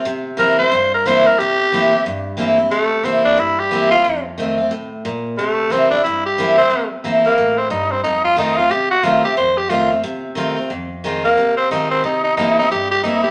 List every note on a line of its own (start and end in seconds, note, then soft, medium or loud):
0.05 0.69 C3 loud
0.37 0.57 E3 loud
0.37 0.58 A#3 loud
0.37 0.58 C4 loud
0.37 0.57 E4 loud
0.37 0.58 A#4 loud
0.59 0.72 C4 medium
0.59 0.71 E4 medium
0.59 0.91 C5 loud
0.72 1.36 G2 loud
0.94 1.08 A#4 medium
1.06 1.25 E3 medium
1.06 1.25 A#3 loud
1.06 1.26 C4 loud
1.06 1.25 E4 loud
1.06 1.28 C5 loud
1.26 1.39 C4 soft
1.26 1.38 E4 medium
1.26 1.40 A#4 loud
1.39 2.03 C3 loud
1.39 2.03 G4 loud
1.72 1.91 E3 medium
1.72 1.92 A#3 medium
1.72 1.92 C4 loud
1.72 1.91 E4 loud
1.92 2.06 C4 soft
1.92 2.05 E4 medium
2.06 2.69 G2 medium
2.37 2.57 E3 medium
2.37 2.57 A#3 loud
2.37 2.58 C4 loud
2.37 2.57 E4 loud
2.58 2.72 C4 soft
2.58 2.71 E4 medium
2.71 3.35 C3 medium
2.71 3.06 A3 loud
3.03 3.36 E3 medium
3.03 3.37 A#3 medium
3.03 3.24 C4 medium
3.03 3.37 C4 medium
3.03 3.37 E4 loud
3.25 3.41 D4 loud
3.37 4.02 G2 medium
3.37 3.61 E4 medium
3.59 3.90 G4 medium
3.71 3.91 E3 medium
3.71 3.91 A#3 loud
3.71 3.91 C4 loud
3.71 3.90 E4 loud
3.91 4.05 C4 soft
3.91 4.04 E4 medium
3.91 4.23 F4 loud
4.04 4.68 F2 medium
4.38 4.57 D#3 medium
4.38 4.58 A3 medium
4.38 4.58 C4 medium
4.38 4.57 F4 medium
4.58 4.72 C4 soft
4.58 4.70 F4 medium
4.71 5.03 A2 medium
5.05 5.37 A#2 loud
5.37 6.02 C3 medium
5.37 5.73 A3 medium
5.70 5.90 E3 medium
5.70 5.91 A#3 medium
5.70 5.90 C4 loud
5.70 5.91 C4 loud
5.70 5.90 E4 medium
5.91 6.05 C4 soft
5.91 6.03 D4 medium
5.91 6.04 E4 medium
6.04 6.69 G2 medium
6.04 6.24 E4 medium
6.26 6.57 G4 medium
6.38 6.57 E3 medium
6.38 6.58 A#3 loud
6.38 6.58 C4 loud
6.38 6.56 E4 loud
6.57 6.90 C4 loud
6.57 6.71 C4 soft
6.57 6.70 E4 medium
6.70 7.35 C3 medium
7.04 7.24 E3 medium
7.04 7.24 A#3 medium
7.04 7.24 C4 loud
7.04 7.23 E4 loud
7.24 7.59 A#3 loud
7.24 7.38 C4 soft
7.24 7.37 E4 medium
7.38 7.70 A2 medium
7.58 7.70 C4 medium
7.70 8.03 G2 medium
7.70 7.93 D#4 medium
7.91 8.03 C4 medium
8.04 8.68 F2 medium
8.04 8.24 D#4 medium
8.24 8.37 F4 loud
8.36 8.56 D#3 medium
8.36 8.57 A3 medium
8.36 8.57 C4 medium
8.36 8.59 D#4 medium
8.36 8.55 F4 loud
8.57 8.71 C4 medium
8.57 8.70 F4 medium
8.57 8.72 F4 loud
8.71 9.35 C3 medium
8.71 8.90 G4 medium
8.91 9.06 F#4 loud
9.03 9.23 D#3 medium
9.03 9.24 A3 loud
9.03 9.24 C4 medium
9.03 9.24 F4 medium
9.03 9.22 F4 loud
9.23 9.37 C4 medium
9.23 9.36 F4 medium
9.23 9.37 G4 medium
9.37 10.01 F2 medium
9.37 9.59 C5 loud
9.57 9.71 G4 medium
9.70 9.90 D#3 medium
9.70 9.90 A3 medium
9.70 9.90 C4 loud
9.70 9.90 F4 loud
9.70 9.89 F4 medium
9.90 10.04 C4 soft
9.90 10.03 F4 medium
10.04 10.68 C3 medium
10.35 10.56 D#3 loud
10.35 10.56 A3 medium
10.35 10.57 C4 loud
10.35 10.55 F4 loud
10.56 10.71 C4 soft
10.56 10.69 F4 medium
10.70 11.34 F2 medium
11.04 11.23 D#3 loud
11.04 11.24 G#3 medium
11.04 11.24 C4 medium
11.04 11.23 F4 loud
11.24 11.56 A#3 loud
11.24 11.38 C4 soft
11.24 11.37 F4 medium
11.37 12.01 C3 medium
11.57 11.70 C4 loud
11.71 12.03 D#3 loud
11.71 12.03 G#3 medium
11.71 12.03 C4 medium
11.71 11.90 D#4 medium
11.71 12.04 F4 loud
11.91 12.03 C4 loud
12.04 12.68 C3 medium
12.04 12.23 D#4 medium
12.24 12.36 D#4 medium
12.37 12.57 E3 loud
12.37 12.57 A#3 medium
12.37 12.57 C4 medium
12.37 12.57 D#4 medium
12.37 12.58 E4 medium
12.59 12.72 C4 medium
12.59 12.71 D#4 loud
12.59 12.71 E4 medium
12.71 13.31 G2 medium
12.71 12.91 G4 medium
12.91 13.03 G4 medium
13.04 13.23 E3 loud
13.04 13.24 A#3 medium
13.04 13.24 C4 medium
13.04 13.23 D#4 medium
13.04 13.23 E4 medium
13.24 13.31 C4 soft
13.24 13.31 E4 soft
13.24 13.31 G4 medium